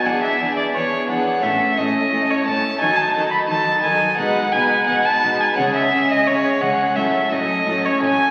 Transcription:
<<
  \new Staff \with { instrumentName = "Violin" } { \time 4/4 \key e \major \tempo 4 = 87 fis''16 e''8 d''16 cis''8 fis''8 e''8 dis''8. cis''16 a''8 | gis''16 a''8 b''16 a''8 gis''8 fis''8 gis''8 fis''16 a''8 gis''16 | fis''16 e''8 dis''16 cis''8 fis''8 e''8 dis''8. cis''16 gis''8 | }
  \new Staff \with { instrumentName = "Violin section" } { \time 4/4 \key e \major gis'8 gis'8 gis'8 gis'8 a'8 a'8 a'8 a'8 | a'8 a'8 a'8 a'8 b'8 b'8 b'8 b'8 | gis'8 gis'8 gis'8 gis'8 a'8 a'8 a'8 a'8 | }
  \new Staff \with { instrumentName = "Violin section" } { \time 4/4 \key e \major d'8 d'8 d'8 d'8 cis'8 cis'8 cis'8 cis'8 | dis'8 dis'8 dis'8 dis'8 dis'8 dis'8 dis'8 dis'8 | cis'8 cis'8 cis'8 cis'8 cis'8 cis'8 cis'8 cis'8 | }
  \new Staff \with { instrumentName = "Viola section" } { \clef bass \time 4/4 \key e \major b8 b8 b8 b8 a8 a8 a8 a8 | fis8 fis8 fis8 fis8 gis8 gis8 gis8 gis8 | gis8 gis8 gis8 gis8 fis8 fis8 fis8 fis8 | }
  \new Staff \with { instrumentName = "Harpsichord" } { \time 4/4 \key e \major <b d' gis'>2 <a cis' a'>2 | <a dis' fis'>2 <b dis' gis'>2 | <gis cis' gis'>2 <cis' a'>2 | }
  \new Staff \with { instrumentName = "Harpsichord" } { \clef bass \time 4/4 \key e \major e,8 e,8 e,8 e,8 a,8 a,8 a,8 a,8 | dis8 dis8 dis8 dis8 b,8 b,8 b,8 b,8 | cis8 cis8 cis8 cis8 a,8 a,8 a,8 a,8 | }
  \new Staff \with { instrumentName = "Cello section" } { \clef bass \time 4/4 \key e \major e,8 e,8 e,8 e,8 a,8 a,8 a,8 a,8 | dis8 dis8 dis8 dis8 b,8 b,8 b,8 b,8 | cis8 cis8 cis8 cis8 a,8 a,8 a,8 a,8 | }
>>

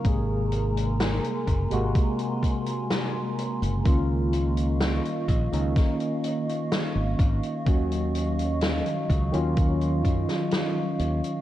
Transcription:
<<
  \new Staff \with { instrumentName = "Ambient pad" } { \time 4/4 \key ees \dorian \tempo 4 = 63 << { <aes'' bes'' c'''>1 | <ees'' f'' des'''>1~ | <ees'' f'' des'''>1 | } \\ { bes'1~ | bes'1 | ges1 | } >> }
  \new Staff \with { instrumentName = "Tine electric piano" } { \time 4/4 \key ees \dorian <c aes bes aes'>4.~ <c aes bes aes'>16 <c aes bes ges'>2~ <c aes bes ges'>16 | <ees bes des' f'>4.~ <ees bes des' f'>16 <ees bes des' ees'>16 r2 | <ees ges des' ges'>4.~ <ees ges des' ges'>16 <ees ges des' f'>2~ <ees ges des' f'>16 | }
  \new Staff \with { instrumentName = "Fingered electric bass" } { \clef bass \time 4/4 \key ees \dorian aes,,4~ aes,,16 r16 ges,,16 aes,,16 r4. r16 ges,,16 | des,4~ des,16 r16 bes,,16 des,16 r4 r16 aes,,16 aes,,16 r16 | ees,4~ ees,16 r16 des,16 ees,8. ges,16 r8. ees,16 r16 | }
  \new DrumStaff \with { instrumentName = "Drums" } \drummode { \time 4/4 <hh bd>8 hh16 hh16 <hh sn>16 hh16 <hh bd>16 hh16 <hh bd>16 hh16 <hh bd>16 hh16 <hh sn>8 hh16 hh16 | <hh bd>8 hh16 hh16 <hh sn>16 hh16 <hh bd>16 hh16 <hh bd sn>16 hh16 hh16 hh16 <hh sn>8 <hh bd>16 hh16 | <hh bd>16 hh16 hh16 hh16 <hh sn>16 hh16 <hh bd>16 hh16 <hh bd>16 hh16 <hh bd>16 <hh sn>16 <hh sn>8 hh16 hh16 | }
>>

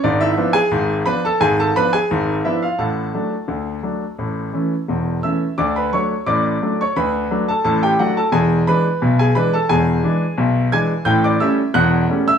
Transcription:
<<
  \new Staff \with { instrumentName = "Grand piano" } { \time 2/4 \key d \major \tempo 4 = 87 <d' d''>16 <e' e''>8 <gis' gis''>8. <b' b''>16 <a' a''>16 | <gis' gis''>16 <a' a''>16 <b' b''>16 <gis' gis''>8. <e' e''>16 <eis' eis''>16 | <a' fis'' a''>2~ | <a' fis'' a''>4 r8 <e'' e'''>8 |
<d'' d'''>16 <b' b''>16 <cis'' cis'''>8 <d'' d'''>8. <cis'' cis'''>16 | <b' b''>8. <a' a''>16 <a' a''>16 <g' g''>16 <fis' fis''>16 <a' a''>16 | <gis' gis''>8 <b' b''>8. <gis' gis''>16 <b' b''>16 <a' a''>16 | <gis' gis''>4. <gis'' gis'''>8 |
<g'' g'''>16 <d'' d'''>16 <e'' e'''>8 <fis'' fis'''>8. <e'' e'''>16 | }
  \new Staff \with { instrumentName = "Grand piano" } { \clef bass \time 2/4 \key d \major <gis,, gis,>8 <eis b d'>8 <gis,, gis,>8 <eis b d'>8 | <gis,, gis,>8 <eis b d'>8 <gis,, gis,>8 <eis b d'>8 | <a,, a,>8 <fis a d'>8 <d, d>8 <fis a d'>8 | <a,, a,>8 <e a cis'>8 <e,, e,>8 <e a cis'>8 |
<d, d>8 <fis a d'>8 <a,, a,>8 <fis a d'>8 | <d, d>8 <fis a d'>8 <a,, a,>8 <fis a d'>8 | <e,, e,>8 <e gis d'>8 <b,, b,>8 <e gis d'>8 | <e,, e,>8 <e gis d'>8 <b,, b,>8 <e gis d'>8 |
<a,, a,>8 <g a cis'>8 <e,, e,>8 <g a cis'>8 | }
>>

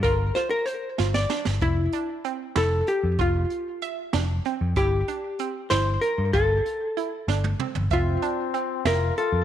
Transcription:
<<
  \new Staff \with { instrumentName = "Hollow-body jazz guitar" } { \time 5/8 \key f \major \tempo 4 = 95 bes'8 c''16 bes'16 c''8. d''8 r16 | e'4. a'8 g'8 | f'2 r8 | g'4. c''8 bes'8 |
a'2 r8 | f'4. bes'8 a'8 | }
  \new Staff \with { instrumentName = "Flugelhorn" } { \time 5/8 \key f \major r2 r8 | r2 r8 | r2 r8 | r2 r8 |
r2 r8 | c'4. f'8 f'8 | }
  \new Staff \with { instrumentName = "Synth arpeggio sound" } { \time 5/8 \key f \major f'8 f'4 f'8 d'8 | e'8 d'8 c'8 e'4 | f'4 e''8 d'8 c'8 | e'8 d'8 c'8 e'4 |
f'4 e'8 d'8 c'8 | e''8 d'8 c'8 e''4 | }
  \new Staff \with { instrumentName = "Picked electric bass" } { \clef bass \time 5/8 \key f \major g,,8 r4 g,,8 r16 g,,16 | f,,8 r4 f,,8 r16 f,16 | f,,8 r4 f,,8 r16 f,16 | g,,8 r4 g,,8 r16 g,16 |
g,,8 r4 g,,8 r16 g,,16 | f,,8 r4 f,,8 r16 f,16 | }
  \new DrumStaff \with { instrumentName = "Drums" } \drummode { \time 5/8 <hh bd>8 <hh sn>8 hh8 sn16 sn16 sn16 sn16 | <hh bd>8 hh8 hh8 <hh sn>8 hh8 | <hh bd>8 hh8 hh8 <hh sn>8 hh8 | <hh bd>8 hh8 hh8 <hh sn>8 hh8 |
<hh bd>8 hh8 hh8 sn16 tommh16 toml16 tomfh16 | <hh bd>8 hh8 hh8 <hh sn>8 hh8 | }
>>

